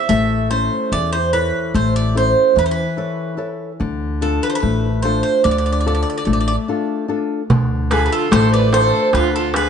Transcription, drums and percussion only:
7.50 darbuka dum
7.91 darbuka tek
8.32 darbuka tek
8.73 darbuka tek
8.93 darbuka tek
9.13 darbuka tek
9.34 darbuka tek
9.54 darbuka tek

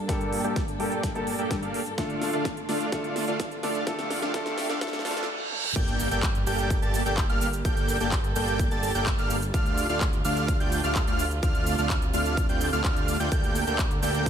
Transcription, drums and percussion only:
0.09 kick, snare, closed hi-hat
0.21 closed hi-hat
0.33 open hi-hat
0.44 closed hi-hat
0.56 kick, snare, closed hi-hat
0.68 closed hi-hat
0.80 open hi-hat
0.92 closed hi-hat
1.03 kick, snare, closed hi-hat
1.15 closed hi-hat
1.27 open hi-hat
1.39 closed hi-hat
1.51 kick, snare, closed hi-hat
1.63 closed hi-hat
1.74 open hi-hat
1.86 closed hi-hat
1.98 kick, snare, closed hi-hat
2.10 closed hi-hat
2.22 snare, open hi-hat
2.33 closed hi-hat
2.45 kick, snare, closed hi-hat
2.57 closed hi-hat
2.69 snare, open hi-hat
2.81 closed hi-hat
2.92 kick, snare, closed hi-hat
3.04 closed hi-hat
3.16 snare, open hi-hat
3.28 closed hi-hat
3.40 kick, snare, closed hi-hat
3.51 closed hi-hat
3.63 snare, open hi-hat
3.75 closed hi-hat
3.87 kick, snare, closed hi-hat
3.99 snare, closed hi-hat
4.10 snare, open hi-hat
4.22 snare, closed hi-hat
4.34 kick, snare, closed hi-hat
4.46 snare, closed hi-hat
4.58 snare, open hi-hat
4.70 snare, closed hi-hat
4.81 kick, snare, closed hi-hat
4.87 snare
4.93 snare, closed hi-hat
4.99 snare
5.05 snare, open hi-hat
5.11 snare
5.17 snare, closed hi-hat
5.23 snare
5.52 high tom
5.64 mid tom
5.76 kick, closed hi-hat, crash, shaker
5.88 closed hi-hat, shaker
6.00 open hi-hat, shaker
6.11 closed hi-hat, shaker
6.23 kick, clap, closed hi-hat, shaker
6.35 closed hi-hat, shaker
6.47 open hi-hat, shaker
6.59 closed hi-hat, shaker
6.70 kick, closed hi-hat, shaker
6.82 closed hi-hat, shaker
6.94 open hi-hat, shaker
7.06 closed hi-hat, shaker
7.17 kick, clap, closed hi-hat, shaker
7.30 closed hi-hat, shaker
7.41 open hi-hat, shaker
7.53 closed hi-hat, shaker
7.65 kick, closed hi-hat, shaker
7.77 closed hi-hat, shaker
7.89 open hi-hat, shaker
8.00 closed hi-hat, shaker
8.12 kick, clap, closed hi-hat, shaker
8.24 closed hi-hat, shaker
8.36 open hi-hat, shaker
8.48 closed hi-hat, shaker
8.59 kick, closed hi-hat, shaker
8.71 closed hi-hat, shaker
8.83 open hi-hat, shaker
8.95 closed hi-hat, shaker
9.06 kick, clap, closed hi-hat, shaker
9.18 closed hi-hat, shaker
9.30 open hi-hat, shaker
9.42 closed hi-hat, shaker
9.54 kick, closed hi-hat, shaker
9.66 closed hi-hat, shaker
9.78 open hi-hat, shaker
9.89 closed hi-hat, shaker
10.01 kick, clap, closed hi-hat, shaker
10.13 closed hi-hat, shaker
10.25 open hi-hat, shaker
10.37 closed hi-hat, shaker
10.48 kick, closed hi-hat, shaker
10.60 closed hi-hat, shaker
10.72 open hi-hat, shaker
10.84 closed hi-hat, shaker
10.95 kick, clap, closed hi-hat, shaker
11.07 closed hi-hat, shaker
11.19 open hi-hat, shaker
11.31 closed hi-hat, shaker
11.43 kick, closed hi-hat, shaker
11.55 closed hi-hat, shaker
11.66 open hi-hat, shaker
11.78 closed hi-hat, shaker
11.90 kick, clap, closed hi-hat, shaker
12.02 closed hi-hat, shaker
12.14 open hi-hat, shaker
12.26 closed hi-hat, shaker
12.37 kick, closed hi-hat, shaker
12.49 closed hi-hat, shaker
12.61 open hi-hat, shaker
12.73 closed hi-hat, shaker
12.84 kick, clap, closed hi-hat, shaker
12.96 closed hi-hat, shaker
13.08 open hi-hat, shaker
13.20 closed hi-hat, shaker
13.32 kick, closed hi-hat, shaker
13.44 closed hi-hat, shaker
13.55 open hi-hat, shaker
13.67 closed hi-hat, shaker
13.79 kick, clap, closed hi-hat, shaker
13.91 closed hi-hat, shaker
14.03 open hi-hat, shaker
14.15 closed hi-hat, shaker
14.26 kick, closed hi-hat, shaker

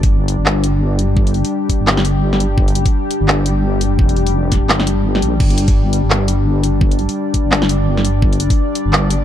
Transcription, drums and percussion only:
0.03 kick, open hi-hat
0.28 closed hi-hat
0.46 clap
0.64 closed hi-hat
0.99 closed hi-hat
1.17 kick
1.27 closed hi-hat
1.34 open hi-hat
1.45 open hi-hat
1.69 kick, closed hi-hat
1.87 clap, snare
1.97 snare
2.05 closed hi-hat
2.33 snare
2.40 closed hi-hat
2.58 kick
2.68 closed hi-hat
2.75 closed hi-hat
2.86 kick, open hi-hat
3.11 closed hi-hat
3.28 clap
3.46 closed hi-hat
3.81 closed hi-hat
3.99 kick
4.09 closed hi-hat
4.16 open hi-hat
4.27 open hi-hat
4.52 kick, snare, closed hi-hat
4.69 clap, snare
4.80 snare
4.87 closed hi-hat
5.15 snare
5.22 closed hi-hat
5.40 kick, crash
5.50 closed hi-hat
5.58 closed hi-hat
5.68 kick, open hi-hat
5.93 closed hi-hat
6.10 clap
6.28 closed hi-hat
6.64 closed hi-hat
6.81 kick
6.91 closed hi-hat
6.99 open hi-hat
7.09 open hi-hat
7.34 kick, closed hi-hat
7.52 clap, snare
7.62 snare
7.69 closed hi-hat
7.97 snare
8.05 closed hi-hat
8.22 kick
8.33 closed hi-hat
8.40 closed hi-hat
8.50 kick, open hi-hat
8.75 closed hi-hat
8.93 clap
9.10 closed hi-hat

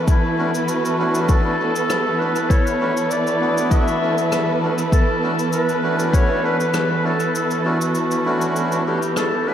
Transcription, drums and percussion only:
0.08 kick, cabasa
0.54 cabasa
0.68 cabasa
0.85 cabasa
1.15 cabasa
1.29 kick, cabasa
1.76 cabasa
1.90 cross-stick, cabasa
2.36 cabasa
2.50 kick, cabasa
2.67 cabasa
2.97 cabasa
3.11 cabasa
3.27 cabasa
3.58 cabasa
3.71 kick, cabasa
3.88 cabasa
4.18 cabasa
4.32 cross-stick, cabasa
4.78 cabasa
4.92 kick, cabasa
5.39 cabasa
5.53 cabasa
5.69 cabasa
5.99 cabasa
6.13 kick, cabasa
6.60 cabasa
6.74 cross-stick, cabasa
7.20 cabasa
7.35 cabasa
7.51 cabasa
7.81 cabasa
7.95 cabasa
8.11 cabasa
8.41 cabasa
8.56 cabasa
8.72 cabasa
9.02 cabasa
9.16 cross-stick, cabasa

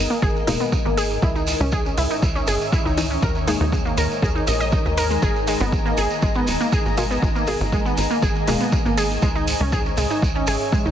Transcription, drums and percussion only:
0.11 shekere
0.22 kick, shekere
0.36 shekere
0.47 open hi-hat, shekere
0.60 shekere
0.72 kick, shekere
0.85 shekere
0.98 open hi-hat, shekere
1.10 shekere
1.22 kick, shekere
1.36 shekere
1.47 open hi-hat, shekere
1.60 shekere
1.72 kick, shekere
1.86 shekere
1.98 open hi-hat, shekere
2.11 shekere
2.22 kick, shekere
2.36 shekere
2.47 open hi-hat, shekere
2.61 shekere
2.72 kick, shekere
2.87 shekere
2.98 open hi-hat, shekere
3.10 shekere
3.22 kick, shekere
3.35 shekere
3.48 open hi-hat, shekere
3.61 shekere
3.72 kick, shekere
3.85 shekere
3.97 open hi-hat, shekere
4.11 shekere
4.22 kick, shekere
4.36 shekere
4.47 open hi-hat, shekere
4.61 shekere
4.72 kick, shekere
4.85 shekere
4.97 open hi-hat, shekere
5.11 shekere
5.22 kick, shekere
5.36 shekere
5.47 open hi-hat, shekere
5.60 shekere
5.72 kick, shekere
5.86 shekere
5.97 open hi-hat, shekere
6.10 shekere
6.22 kick, shekere
6.35 shekere
6.47 open hi-hat, shekere
6.61 shekere
6.72 kick, shekere
6.85 shekere
6.97 open hi-hat, shekere
7.11 shekere
7.22 kick, shekere
7.36 shekere
7.47 open hi-hat, shekere
7.60 shekere
7.72 kick, shekere
7.86 shekere
7.97 open hi-hat, shekere
8.10 shekere
8.22 kick, shekere
8.35 shekere
8.47 open hi-hat, shekere
8.60 shekere
8.72 kick, shekere
8.86 shekere
8.97 open hi-hat, shekere
9.10 shekere
9.22 kick, shekere
9.35 shekere
9.48 open hi-hat, shekere
9.60 shekere
9.72 kick, shekere
9.86 shekere
9.97 open hi-hat, shekere
10.10 shekere
10.22 kick, shekere
10.35 shekere
10.47 open hi-hat, shekere
10.60 shekere
10.72 kick, shekere
10.85 shekere

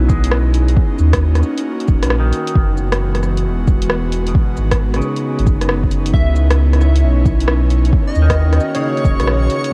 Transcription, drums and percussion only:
0.09 kick, cabasa
0.24 closed hi-hat
0.31 cross-stick
0.54 closed hi-hat, cabasa
0.68 closed hi-hat
0.77 kick
0.98 cabasa
1.13 kick, cross-stick, closed hi-hat
1.35 cross-stick, closed hi-hat
1.43 cabasa
1.58 closed hi-hat
1.80 closed hi-hat
1.88 kick, cabasa
2.03 cross-stick, closed hi-hat
2.10 cross-stick
2.33 closed hi-hat, cabasa
2.47 closed hi-hat
2.55 kick
2.77 cabasa
2.92 cross-stick, closed hi-hat
3.15 cross-stick, closed hi-hat
3.23 cross-stick, cabasa
3.37 closed hi-hat
3.67 kick, cabasa
3.82 closed hi-hat
3.90 cross-stick
4.12 closed hi-hat, cabasa
4.27 closed hi-hat
4.35 kick
4.57 cabasa
4.71 kick, cross-stick, closed hi-hat
4.94 cross-stick, closed hi-hat
5.02 cabasa
5.16 closed hi-hat
5.39 closed hi-hat
5.47 kick, cabasa
5.61 cross-stick, closed hi-hat
5.69 cross-stick
5.83 kick
5.91 closed hi-hat, cabasa
6.06 closed hi-hat
6.14 kick
6.36 cabasa
6.51 cross-stick, closed hi-hat
6.73 cross-stick, closed hi-hat
6.81 cross-stick, cabasa
6.96 closed hi-hat
7.25 kick, cabasa
7.41 closed hi-hat
7.48 cross-stick
7.70 closed hi-hat, cabasa
7.85 closed hi-hat
7.93 kick
8.15 cabasa
8.30 kick, cross-stick, closed hi-hat
8.53 cross-stick, closed hi-hat
8.60 cabasa
8.75 closed hi-hat
8.97 closed hi-hat
9.05 kick, cabasa
9.20 cross-stick, closed hi-hat
9.27 cross-stick
9.50 closed hi-hat, cabasa
9.64 closed hi-hat

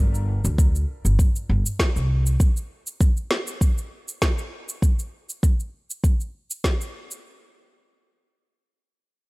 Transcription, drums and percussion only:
0.15 shaker
0.45 shaker
0.58 kick, shaker
0.75 shaker
1.05 shaker
1.19 kick, shaker
1.36 shaker
1.66 shaker
1.79 kick, snare, shaker
1.96 shaker
2.26 shaker
2.40 kick, shaker
2.57 shaker
2.87 shaker
3.01 kick, shaker
3.17 shaker
3.31 snare
3.47 shaker
3.61 kick, shaker
3.78 shaker
4.08 shaker
4.22 kick, snare, shaker
4.38 shaker
4.69 shaker
4.82 kick, shaker
4.99 shaker
5.29 shaker
5.43 kick, shaker
5.60 shaker
5.90 shaker
6.04 kick, shaker
6.20 shaker
6.51 shaker
6.64 kick, snare, shaker
6.81 shaker
7.11 shaker

